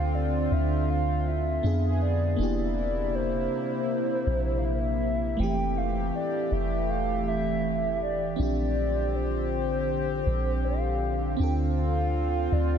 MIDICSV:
0, 0, Header, 1, 5, 480
1, 0, Start_track
1, 0, Key_signature, -1, "major"
1, 0, Tempo, 750000
1, 1528, Time_signature, 4, 2, 24, 8
1, 8179, End_track
2, 0, Start_track
2, 0, Title_t, "Soft synth lead"
2, 0, Program_c, 0, 80
2, 0, Note_on_c, 0, 77, 106
2, 94, Note_on_c, 0, 74, 99
2, 103, Note_off_c, 0, 77, 0
2, 335, Note_on_c, 0, 76, 103
2, 345, Note_off_c, 0, 74, 0
2, 576, Note_on_c, 0, 77, 110
2, 585, Note_off_c, 0, 76, 0
2, 815, Note_on_c, 0, 76, 102
2, 825, Note_off_c, 0, 77, 0
2, 1289, Note_off_c, 0, 76, 0
2, 1293, Note_on_c, 0, 74, 89
2, 1514, Note_off_c, 0, 74, 0
2, 1535, Note_on_c, 0, 74, 106
2, 2014, Note_on_c, 0, 72, 99
2, 2024, Note_off_c, 0, 74, 0
2, 2931, Note_on_c, 0, 77, 73
2, 2941, Note_off_c, 0, 72, 0
2, 2976, Note_on_c, 0, 76, 102
2, 2985, Note_off_c, 0, 77, 0
2, 3454, Note_on_c, 0, 79, 110
2, 3463, Note_off_c, 0, 76, 0
2, 3696, Note_on_c, 0, 77, 99
2, 3706, Note_off_c, 0, 79, 0
2, 3932, Note_off_c, 0, 77, 0
2, 3935, Note_on_c, 0, 74, 94
2, 4176, Note_on_c, 0, 76, 101
2, 4186, Note_off_c, 0, 74, 0
2, 4416, Note_on_c, 0, 77, 103
2, 4425, Note_off_c, 0, 76, 0
2, 4652, Note_off_c, 0, 77, 0
2, 4659, Note_on_c, 0, 76, 100
2, 5108, Note_off_c, 0, 76, 0
2, 5136, Note_on_c, 0, 74, 91
2, 5356, Note_off_c, 0, 74, 0
2, 5378, Note_on_c, 0, 74, 102
2, 5855, Note_on_c, 0, 72, 100
2, 5865, Note_off_c, 0, 74, 0
2, 6812, Note_off_c, 0, 72, 0
2, 6815, Note_on_c, 0, 77, 98
2, 7266, Note_off_c, 0, 77, 0
2, 7293, Note_on_c, 0, 79, 97
2, 7383, Note_off_c, 0, 79, 0
2, 7533, Note_on_c, 0, 77, 106
2, 8018, Note_on_c, 0, 74, 105
2, 8027, Note_off_c, 0, 77, 0
2, 8179, Note_off_c, 0, 74, 0
2, 8179, End_track
3, 0, Start_track
3, 0, Title_t, "FM electric piano"
3, 0, Program_c, 1, 5
3, 0, Control_c, 1, 64, 127
3, 0, Note_on_c, 1, 60, 66
3, 0, Note_on_c, 1, 62, 62
3, 0, Note_on_c, 1, 65, 65
3, 0, Note_on_c, 1, 69, 74
3, 1014, Note_off_c, 1, 60, 0
3, 1022, Note_off_c, 1, 62, 0
3, 1028, Note_off_c, 1, 65, 0
3, 1036, Note_off_c, 1, 69, 0
3, 1044, Note_on_c, 1, 59, 69
3, 1051, Note_on_c, 1, 62, 60
3, 1056, Control_c, 1, 64, 0
3, 1058, Note_on_c, 1, 65, 61
3, 1064, Note_on_c, 1, 68, 71
3, 1181, Control_c, 1, 64, 127
3, 1513, Note_on_c, 1, 58, 72
3, 1519, Note_off_c, 1, 62, 0
3, 1526, Note_off_c, 1, 59, 0
3, 1527, Note_on_c, 1, 62, 59
3, 1533, Note_off_c, 1, 65, 0
3, 1536, Note_off_c, 1, 68, 0
3, 1536, Control_c, 1, 64, 0
3, 1541, Note_on_c, 1, 64, 64
3, 1556, Note_on_c, 1, 67, 75
3, 1653, Control_c, 1, 64, 127
3, 3415, Note_off_c, 1, 58, 0
3, 3422, Note_off_c, 1, 62, 0
3, 3429, Note_off_c, 1, 64, 0
3, 3435, Note_on_c, 1, 57, 67
3, 3437, Note_off_c, 1, 67, 0
3, 3448, Note_on_c, 1, 60, 61
3, 3457, Control_c, 1, 64, 0
3, 3463, Note_on_c, 1, 52, 61
3, 3478, Note_on_c, 1, 67, 74
3, 3566, Control_c, 1, 64, 127
3, 5336, Note_off_c, 1, 57, 0
3, 5343, Note_off_c, 1, 60, 0
3, 5350, Note_off_c, 1, 52, 0
3, 5351, Note_on_c, 1, 60, 67
3, 5357, Note_off_c, 1, 67, 0
3, 5365, Note_on_c, 1, 62, 65
3, 5376, Control_c, 1, 64, 0
3, 5380, Note_on_c, 1, 65, 59
3, 5394, Note_on_c, 1, 67, 76
3, 5504, Control_c, 1, 64, 127
3, 7254, Note_off_c, 1, 60, 0
3, 7261, Note_off_c, 1, 62, 0
3, 7269, Note_off_c, 1, 65, 0
3, 7274, Note_on_c, 1, 60, 70
3, 7276, Note_off_c, 1, 67, 0
3, 7287, Note_on_c, 1, 62, 60
3, 7296, Control_c, 1, 64, 0
3, 7303, Note_on_c, 1, 65, 61
3, 7317, Note_on_c, 1, 69, 73
3, 7419, Control_c, 1, 64, 127
3, 8179, Note_off_c, 1, 60, 0
3, 8179, Note_off_c, 1, 62, 0
3, 8179, Note_off_c, 1, 65, 0
3, 8179, Note_off_c, 1, 69, 0
3, 8179, End_track
4, 0, Start_track
4, 0, Title_t, "Analog synth pad"
4, 0, Program_c, 2, 89
4, 0, Note_on_c, 2, 50, 83
4, 0, Note_on_c, 2, 60, 77
4, 0, Note_on_c, 2, 65, 96
4, 1033, Note_off_c, 2, 65, 0
4, 1034, Note_off_c, 2, 60, 0
4, 1049, Note_on_c, 2, 59, 70
4, 1050, Note_on_c, 2, 68, 88
4, 1502, Note_off_c, 2, 50, 0
4, 1524, Note_off_c, 2, 59, 0
4, 1524, Note_off_c, 2, 68, 0
4, 1527, Note_on_c, 2, 48, 82
4, 1527, Note_on_c, 2, 64, 91
4, 1529, Note_on_c, 2, 58, 74
4, 3428, Note_off_c, 2, 48, 0
4, 3429, Note_off_c, 2, 58, 0
4, 3429, Note_off_c, 2, 64, 0
4, 3451, Note_on_c, 2, 52, 78
4, 3452, Note_on_c, 2, 57, 76
4, 3452, Note_on_c, 2, 67, 92
4, 5350, Note_off_c, 2, 52, 0
4, 5351, Note_off_c, 2, 57, 0
4, 5351, Note_off_c, 2, 67, 0
4, 5367, Note_on_c, 2, 50, 82
4, 5368, Note_on_c, 2, 60, 78
4, 5368, Note_on_c, 2, 67, 91
4, 7269, Note_off_c, 2, 60, 0
4, 7269, Note_off_c, 2, 67, 0
4, 7287, Note_on_c, 2, 65, 92
4, 7289, Note_on_c, 2, 60, 75
4, 8179, Note_off_c, 2, 50, 0
4, 8179, Note_off_c, 2, 60, 0
4, 8179, Note_off_c, 2, 65, 0
4, 8179, End_track
5, 0, Start_track
5, 0, Title_t, "808-style bass"
5, 0, Program_c, 3, 38
5, 0, Note_on_c, 3, 38, 115
5, 302, Note_off_c, 3, 38, 0
5, 328, Note_on_c, 3, 38, 99
5, 1023, Note_off_c, 3, 38, 0
5, 1049, Note_on_c, 3, 41, 110
5, 1509, Note_off_c, 3, 41, 0
5, 1529, Note_on_c, 3, 28, 116
5, 2223, Note_off_c, 3, 28, 0
5, 2730, Note_on_c, 3, 34, 102
5, 3424, Note_off_c, 3, 34, 0
5, 3451, Note_on_c, 3, 29, 115
5, 3910, Note_off_c, 3, 29, 0
5, 4170, Note_on_c, 3, 29, 99
5, 5343, Note_off_c, 3, 29, 0
5, 5370, Note_on_c, 3, 34, 112
5, 6543, Note_off_c, 3, 34, 0
5, 6569, Note_on_c, 3, 34, 111
5, 7263, Note_off_c, 3, 34, 0
5, 7292, Note_on_c, 3, 38, 107
5, 7985, Note_off_c, 3, 38, 0
5, 8012, Note_on_c, 3, 38, 102
5, 8179, Note_off_c, 3, 38, 0
5, 8179, End_track
0, 0, End_of_file